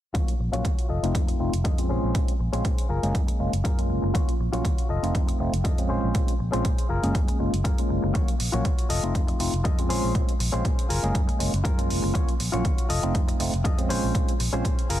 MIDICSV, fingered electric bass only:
0, 0, Header, 1, 3, 480
1, 0, Start_track
1, 0, Tempo, 500000
1, 143, Time_signature, 4, 2, 24, 8
1, 14400, End_track
2, 0, Start_track
2, 0, Title_t, "Fingered electric bass"
2, 0, Program_c, 0, 33
2, 142, Note_on_c, 0, 39, 88
2, 225, Note_off_c, 0, 39, 0
2, 381, Note_on_c, 0, 34, 74
2, 465, Note_off_c, 0, 34, 0
2, 509, Note_on_c, 0, 34, 86
2, 582, Note_off_c, 0, 34, 0
2, 621, Note_on_c, 0, 39, 79
2, 705, Note_off_c, 0, 39, 0
2, 861, Note_on_c, 0, 29, 88
2, 945, Note_off_c, 0, 29, 0
2, 990, Note_on_c, 0, 29, 93
2, 1062, Note_off_c, 0, 29, 0
2, 1102, Note_on_c, 0, 41, 89
2, 1263, Note_off_c, 0, 41, 0
2, 1342, Note_on_c, 0, 29, 81
2, 1426, Note_off_c, 0, 29, 0
2, 1471, Note_on_c, 0, 29, 82
2, 1543, Note_off_c, 0, 29, 0
2, 1582, Note_on_c, 0, 41, 90
2, 1821, Note_on_c, 0, 34, 83
2, 1835, Note_off_c, 0, 41, 0
2, 1905, Note_off_c, 0, 34, 0
2, 1949, Note_on_c, 0, 34, 76
2, 2022, Note_off_c, 0, 34, 0
2, 2300, Note_on_c, 0, 34, 77
2, 2384, Note_off_c, 0, 34, 0
2, 2430, Note_on_c, 0, 34, 89
2, 2502, Note_off_c, 0, 34, 0
2, 2542, Note_on_c, 0, 46, 74
2, 2626, Note_off_c, 0, 46, 0
2, 2780, Note_on_c, 0, 30, 88
2, 2865, Note_off_c, 0, 30, 0
2, 2910, Note_on_c, 0, 30, 93
2, 2982, Note_off_c, 0, 30, 0
2, 3022, Note_on_c, 0, 42, 92
2, 3148, Note_off_c, 0, 42, 0
2, 3262, Note_on_c, 0, 30, 89
2, 3346, Note_off_c, 0, 30, 0
2, 3390, Note_on_c, 0, 30, 87
2, 3462, Note_off_c, 0, 30, 0
2, 3502, Note_on_c, 0, 42, 89
2, 3741, Note_on_c, 0, 30, 84
2, 3756, Note_off_c, 0, 42, 0
2, 3825, Note_off_c, 0, 30, 0
2, 3868, Note_on_c, 0, 30, 74
2, 3941, Note_off_c, 0, 30, 0
2, 3982, Note_on_c, 0, 39, 92
2, 4066, Note_off_c, 0, 39, 0
2, 4219, Note_on_c, 0, 34, 76
2, 4304, Note_off_c, 0, 34, 0
2, 4347, Note_on_c, 0, 34, 87
2, 4421, Note_off_c, 0, 34, 0
2, 4461, Note_on_c, 0, 39, 82
2, 4545, Note_off_c, 0, 39, 0
2, 4697, Note_on_c, 0, 29, 89
2, 4783, Note_off_c, 0, 29, 0
2, 4829, Note_on_c, 0, 29, 92
2, 4902, Note_off_c, 0, 29, 0
2, 4942, Note_on_c, 0, 41, 91
2, 5103, Note_off_c, 0, 41, 0
2, 5181, Note_on_c, 0, 29, 86
2, 5265, Note_off_c, 0, 29, 0
2, 5310, Note_on_c, 0, 29, 88
2, 5383, Note_off_c, 0, 29, 0
2, 5421, Note_on_c, 0, 41, 83
2, 5661, Note_on_c, 0, 34, 83
2, 5675, Note_off_c, 0, 41, 0
2, 5745, Note_off_c, 0, 34, 0
2, 5791, Note_on_c, 0, 34, 77
2, 5863, Note_off_c, 0, 34, 0
2, 5901, Note_on_c, 0, 46, 87
2, 5985, Note_off_c, 0, 46, 0
2, 6146, Note_on_c, 0, 34, 73
2, 6228, Note_off_c, 0, 34, 0
2, 6275, Note_on_c, 0, 34, 89
2, 6345, Note_off_c, 0, 34, 0
2, 6383, Note_on_c, 0, 46, 78
2, 6466, Note_off_c, 0, 46, 0
2, 6626, Note_on_c, 0, 30, 88
2, 6707, Note_off_c, 0, 30, 0
2, 6754, Note_on_c, 0, 30, 96
2, 6824, Note_off_c, 0, 30, 0
2, 7106, Note_on_c, 0, 30, 80
2, 7187, Note_off_c, 0, 30, 0
2, 7233, Note_on_c, 0, 30, 78
2, 7304, Note_off_c, 0, 30, 0
2, 7582, Note_on_c, 0, 30, 86
2, 7666, Note_off_c, 0, 30, 0
2, 7714, Note_on_c, 0, 30, 87
2, 7784, Note_off_c, 0, 30, 0
2, 7822, Note_on_c, 0, 39, 91
2, 7906, Note_off_c, 0, 39, 0
2, 8065, Note_on_c, 0, 34, 75
2, 8147, Note_off_c, 0, 34, 0
2, 8193, Note_on_c, 0, 34, 91
2, 8264, Note_off_c, 0, 34, 0
2, 8545, Note_on_c, 0, 29, 89
2, 8627, Note_off_c, 0, 29, 0
2, 8672, Note_on_c, 0, 29, 92
2, 8743, Note_off_c, 0, 29, 0
2, 8784, Note_on_c, 0, 41, 92
2, 8944, Note_off_c, 0, 41, 0
2, 9022, Note_on_c, 0, 29, 83
2, 9105, Note_off_c, 0, 29, 0
2, 9152, Note_on_c, 0, 29, 88
2, 9223, Note_off_c, 0, 29, 0
2, 9263, Note_on_c, 0, 41, 87
2, 9504, Note_on_c, 0, 34, 82
2, 9518, Note_off_c, 0, 41, 0
2, 9587, Note_off_c, 0, 34, 0
2, 9635, Note_on_c, 0, 34, 76
2, 9705, Note_off_c, 0, 34, 0
2, 9743, Note_on_c, 0, 46, 90
2, 9826, Note_off_c, 0, 46, 0
2, 9981, Note_on_c, 0, 34, 77
2, 10065, Note_off_c, 0, 34, 0
2, 10113, Note_on_c, 0, 34, 90
2, 10184, Note_off_c, 0, 34, 0
2, 10223, Note_on_c, 0, 46, 78
2, 10306, Note_off_c, 0, 46, 0
2, 10464, Note_on_c, 0, 30, 90
2, 10546, Note_off_c, 0, 30, 0
2, 10592, Note_on_c, 0, 30, 93
2, 10663, Note_off_c, 0, 30, 0
2, 10702, Note_on_c, 0, 42, 96
2, 10827, Note_off_c, 0, 42, 0
2, 10947, Note_on_c, 0, 30, 83
2, 11028, Note_off_c, 0, 30, 0
2, 11073, Note_on_c, 0, 30, 89
2, 11144, Note_off_c, 0, 30, 0
2, 11425, Note_on_c, 0, 30, 83
2, 11507, Note_off_c, 0, 30, 0
2, 11553, Note_on_c, 0, 30, 77
2, 11624, Note_off_c, 0, 30, 0
2, 11663, Note_on_c, 0, 39, 93
2, 11746, Note_off_c, 0, 39, 0
2, 11908, Note_on_c, 0, 34, 74
2, 11988, Note_off_c, 0, 34, 0
2, 12034, Note_on_c, 0, 34, 90
2, 12105, Note_off_c, 0, 34, 0
2, 12383, Note_on_c, 0, 29, 91
2, 12466, Note_off_c, 0, 29, 0
2, 12512, Note_on_c, 0, 29, 96
2, 12583, Note_off_c, 0, 29, 0
2, 12622, Note_on_c, 0, 41, 96
2, 12783, Note_off_c, 0, 41, 0
2, 12864, Note_on_c, 0, 29, 87
2, 12946, Note_off_c, 0, 29, 0
2, 12992, Note_on_c, 0, 29, 85
2, 13063, Note_off_c, 0, 29, 0
2, 13102, Note_on_c, 0, 41, 93
2, 13343, Note_on_c, 0, 34, 82
2, 13358, Note_off_c, 0, 41, 0
2, 13426, Note_off_c, 0, 34, 0
2, 13473, Note_on_c, 0, 34, 76
2, 13544, Note_off_c, 0, 34, 0
2, 13581, Note_on_c, 0, 46, 94
2, 13665, Note_off_c, 0, 46, 0
2, 13821, Note_on_c, 0, 34, 77
2, 13905, Note_off_c, 0, 34, 0
2, 13949, Note_on_c, 0, 34, 90
2, 14022, Note_off_c, 0, 34, 0
2, 14062, Note_on_c, 0, 46, 81
2, 14146, Note_off_c, 0, 46, 0
2, 14302, Note_on_c, 0, 30, 85
2, 14386, Note_off_c, 0, 30, 0
2, 14400, End_track
3, 0, Start_track
3, 0, Title_t, "Muted fingered electric bass strokes"
3, 3154, Note_on_c, 9, 29, 41
3, 3250, Note_off_c, 9, 29, 0
3, 6995, Note_on_c, 9, 29, 41
3, 7091, Note_off_c, 9, 29, 0
3, 10833, Note_on_c, 9, 29, 42
3, 10929, Note_off_c, 9, 29, 0
3, 14400, End_track
0, 0, End_of_file